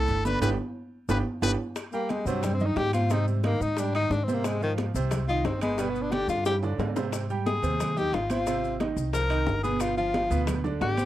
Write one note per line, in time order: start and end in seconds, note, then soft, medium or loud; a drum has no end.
0.00 0.19 A2 medium
0.00 0.20 A3 medium
0.00 0.20 A4 medium
0.00 0.25 A4 loud
0.08 0.40 G1 medium
0.08 cowbell medium
0.08 high conga soft
0.08 low agogo medium
0.08 maracas soft
0.25 0.40 D3 medium
0.25 0.40 D4 medium
0.25 0.41 B4 loud
0.25 0.40 D5 medium
0.25 cowbell medium
0.25 high conga medium
0.25 low agogo loud
0.25 maracas medium
0.41 0.54 G1 medium
0.41 0.53 B3 loud
0.41 0.53 D4 loud
0.41 0.53 G4 loud
0.41 0.50 B4 loud
0.41 cowbell loud
0.41 high conga loud
0.41 high timbale loud
0.41 maracas loud
1.09 1.21 G1 loud
1.09 1.20 B3 loud
1.09 1.20 D4 loud
1.09 1.20 G4 loud
1.09 1.18 B4 medium
1.09 cowbell loud
1.09 high conga loud
1.09 high timbale loud
1.09 maracas loud
1.42 1.55 G1 medium
1.42 1.53 B3 loud
1.42 1.53 D4 loud
1.42 1.53 G4 loud
1.42 1.51 B4 loud
1.42 cowbell loud
1.42 high conga medium
1.42 high timbale loud
1.42 maracas loud
1.76 high bongo medium
1.76 high conga soft
1.76 high timbale loud
1.76 maracas medium
1.93 2.21 G3 medium
1.93 2.11 A#3 medium
1.93 2.21 G4 medium
1.93 2.21 G5 medium
1.93 high conga soft
1.93 maracas soft
2.09 2.28 G#3 medium
2.09 high bongo medium
2.09 high conga medium
2.09 high timbale medium
2.09 maracas soft
2.26 2.73 G2 loud
2.26 2.54 C3 medium
2.26 2.46 F#3 medium
2.26 2.54 C4 medium
2.26 2.55 C5 medium
2.26 high bongo soft
2.26 high conga soft
2.26 maracas medium
2.43 2.56 G3 medium
2.43 high bongo medium
2.43 high conga soft
2.43 low conga medium
2.43 high timbale medium
2.43 maracas medium
2.54 2.68 C4 medium
2.60 2.88 D#3 medium
2.60 2.88 D#4 medium
2.60 2.88 D#5 medium
2.60 high bongo soft
2.60 high conga soft
2.60 low conga medium
2.60 maracas soft
2.66 2.79 D#4 medium
2.76 3.55 G#2 medium
2.76 2.93 G4 loud
2.76 high bongo medium
2.76 low bongo medium
2.76 high conga soft
2.76 high timbale medium
2.76 low timbale medium
2.76 maracas soft
2.93 3.08 C4 medium
2.93 3.13 F4 loud
2.93 3.08 C5 medium
2.93 3.08 C6 medium
2.93 high bongo soft
2.93 high conga medium
2.93 high timbale medium
2.93 maracas medium
3.10 3.38 C3 medium
3.10 3.38 C4 medium
3.10 3.28 D#4 medium
3.10 3.38 C5 medium
3.10 high bongo medium
3.10 high conga soft
3.10 high timbale medium
3.10 maracas medium
3.28 3.44 G3 soft
3.28 high conga soft
3.28 maracas soft
3.44 3.72 D#3 medium
3.44 3.64 A#3 medium
3.44 3.72 D#4 medium
3.44 3.72 D#5 medium
3.44 high bongo medium
3.44 high conga medium
3.44 high timbale medium
3.44 maracas soft
3.60 4.08 G#2 loud
3.60 3.81 D#4 loud
3.60 high bongo soft
3.60 high conga soft
3.60 maracas medium
3.77 3.92 G3 medium
3.77 3.95 D4 medium
3.77 3.92 G4 medium
3.77 3.92 G5 medium
3.77 high bongo medium
3.77 high conga soft
3.77 high timbale medium
3.77 maracas loud
3.94 4.23 D#3 medium
3.94 4.14 D#4 loud
3.94 4.23 D#4 medium
3.94 4.23 D#5 medium
3.94 high bongo soft
3.94 high conga soft
3.94 high timbale loud
3.94 maracas soft
4.10 4.89 G#2 medium
4.10 4.25 D4 loud
4.10 high bongo medium
4.10 low bongo medium
4.10 high conga soft
4.10 maracas soft
4.24 4.36 C4 medium
4.28 4.55 C3 medium
4.28 4.56 C4 medium
4.28 4.56 C5 medium
4.28 high conga medium
4.28 maracas medium
4.34 4.47 A#3 medium
4.44 4.62 G#3 medium
4.44 high bongo medium
4.44 high conga soft
4.44 high timbale loud
4.44 maracas medium
4.62 4.73 D#3 medium
4.62 4.89 F3 medium
4.62 4.89 F4 medium
4.62 4.90 F5 medium
4.62 high conga soft
4.62 maracas soft
4.78 high bongo medium
4.78 high conga loud
4.78 high timbale medium
4.78 maracas soft
4.94 5.41 C2 loud
4.94 5.23 C3 medium
4.94 5.23 C4 medium
4.94 5.23 C5 medium
4.94 high bongo soft
4.94 high conga soft
4.94 maracas medium
5.11 high bongo medium
5.11 high conga soft
5.11 low conga medium
5.11 high timbale medium
5.11 maracas medium
5.28 5.56 D#3 medium
5.28 5.57 D#4 medium
5.28 5.47 F4 loud
5.28 5.57 D#5 medium
5.28 high bongo soft
5.28 high conga soft
5.28 maracas soft
5.45 6.23 G1 medium
5.45 5.61 C4 medium
5.45 high bongo medium
5.45 low bongo medium
5.45 high conga soft
5.45 high timbale medium
5.45 maracas soft
5.61 5.80 G#3 loud
5.61 5.76 B3 medium
5.61 5.76 B4 medium
5.61 5.77 B5 medium
5.61 high bongo soft
5.61 high conga medium
5.61 high timbale loud
5.61 maracas medium
5.78 6.06 B2 medium
5.78 5.91 G3 medium
5.78 6.07 B3 medium
5.78 6.07 B4 medium
5.78 high bongo medium
5.78 high timbale medium
5.78 maracas medium
5.90 6.03 B3 medium
5.95 high conga soft
5.95 maracas soft
6.02 6.14 D4 medium
6.12 6.40 D3 medium
6.12 6.40 D4 medium
6.12 6.29 G4 loud
6.12 6.40 D5 medium
6.12 high bongo medium
6.12 high conga medium
6.12 high timbale medium
6.12 maracas soft
6.28 6.75 G2 medium
6.28 6.45 F4 medium
6.28 high bongo medium
6.28 high conga soft
6.28 maracas medium
6.45 6.60 G3 medium
6.45 6.56 G4 loud
6.45 6.60 G4 medium
6.45 6.60 G5 medium
6.45 high bongo loud
6.45 high conga soft
6.45 high timbale medium
6.45 maracas medium
6.63 6.90 D3 medium
6.63 6.91 D4 medium
6.63 6.91 D5 medium
6.63 high conga soft
6.63 high timbale medium
6.63 maracas soft
6.78 7.57 G#2 medium
6.78 low bongo medium
6.78 high conga soft
6.78 low timbale loud
6.78 maracas soft
6.96 7.24 C3 medium
6.96 7.24 C4 medium
6.96 7.24 C5 medium
6.96 low bongo medium
6.96 low timbale medium
6.96 maracas medium
7.12 high bongo medium
7.12 high conga soft
7.12 high timbale medium
7.12 maracas medium
7.30 7.57 G3 medium
7.30 7.57 G4 medium
7.30 7.58 G5 medium
7.30 high conga soft
7.30 maracas soft
7.46 7.99 G#4 medium
7.46 high bongo medium
7.46 high conga medium
7.46 high timbale medium
7.46 maracas soft
7.62 8.09 D#2 loud
7.62 7.90 C3 medium
7.62 7.90 C4 medium
7.62 7.91 C5 medium
7.62 high bongo soft
7.62 high conga soft
7.62 maracas medium
7.80 high bongo medium
7.80 high conga soft
7.80 low conga medium
7.80 high timbale medium
7.80 maracas medium
7.96 8.24 D#3 medium
7.96 8.24 D#4 medium
7.96 8.16 G4 loud
7.96 8.24 D#5 medium
7.96 high bongo soft
7.96 high conga soft
7.96 low conga medium
7.96 maracas soft
8.12 8.91 G#1 medium
8.12 8.30 F4 medium
8.12 high bongo medium
8.12 low bongo medium
8.12 high conga soft
8.12 high timbale medium
8.12 maracas soft
8.30 8.44 C4 medium
8.30 8.77 F4 medium
8.30 8.44 C5 medium
8.30 8.44 C6 medium
8.30 high bongo soft
8.30 high conga medium
8.30 high timbale medium
8.30 maracas medium
8.47 8.74 C3 medium
8.47 8.74 C4 medium
8.47 8.75 C5 medium
8.47 high bongo medium
8.47 high conga soft
8.47 high timbale medium
8.47 maracas medium
8.64 high conga soft
8.64 maracas soft
8.80 9.08 D#3 medium
8.80 9.08 D#4 medium
8.80 9.08 D#5 medium
8.80 high bongo medium
8.80 high conga medium
8.80 high timbale medium
8.80 maracas soft
8.96 9.43 C2 loud
8.96 high bongo soft
8.96 maracas medium
9.13 9.27 F3 medium
9.13 9.27 F4 medium
9.13 9.60 A#4 loud
9.13 9.28 F5 medium
9.13 high bongo medium
9.13 high conga soft
9.13 high timbale medium
9.13 maracas medium
9.30 9.58 D#3 medium
9.30 9.58 D#4 medium
9.30 9.58 D#5 medium
9.30 high bongo soft
9.30 high conga soft
9.30 high timbale loud
9.30 maracas soft
9.47 10.25 G1 medium
9.47 high bongo medium
9.47 low bongo medium
9.47 high conga soft
9.47 maracas soft
9.63 9.91 B2 medium
9.63 9.91 B3 medium
9.63 9.83 G#4 medium
9.63 9.91 B4 medium
9.63 high conga medium
9.63 maracas medium
9.80 9.97 F4 medium
9.80 high bongo medium
9.80 high conga soft
9.80 high timbale medium
9.80 maracas medium
9.97 10.25 F3 medium
9.97 10.44 F4 loud
9.97 10.25 F4 medium
9.97 10.25 F5 medium
9.97 high conga soft
9.97 maracas soft
10.14 high bongo medium
10.14 high conga loud
10.14 high timbale medium
10.14 maracas soft
10.30 10.77 D2 medium
10.30 10.58 B2 medium
10.30 10.58 B3 medium
10.30 10.58 B4 medium
10.30 high bongo soft
10.30 high conga soft
10.30 maracas medium
10.47 high bongo medium
10.47 high conga soft
10.47 low conga medium
10.47 high timbale medium
10.47 maracas medium
10.64 10.91 D3 medium
10.64 10.91 D4 medium
10.64 10.92 D5 medium
10.64 high bongo soft
10.64 high conga soft
10.64 low conga medium
10.64 maracas soft
10.81 11.05 G#1 medium
10.81 11.05 G4 loud
10.81 high bongo medium
10.81 low bongo medium
10.81 high conga soft
10.81 high timbale medium
10.81 low timbale medium
10.81 maracas soft
10.97 11.05 C4 medium
10.97 11.05 C5 medium
10.97 11.05 C6 medium
10.97 high bongo soft
10.97 high conga medium
10.97 high timbale medium
10.97 maracas medium